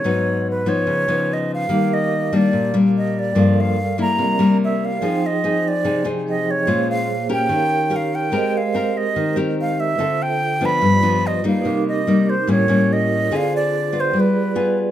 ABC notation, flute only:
X:1
M:4/4
L:1/8
Q:1/4=145
K:Cm
V:1 name="Flute"
_d2 _c d3 e f- | f e2 d2 z e d- | d f2 b3 =e f- | f e2 d2 z e _d- |
_d f2 g3 f g- | g f2 e2 z f =e- | =e g2 =b3 _e f- | f e2 c ^c2 e2 |
f d2 c =B3 z |]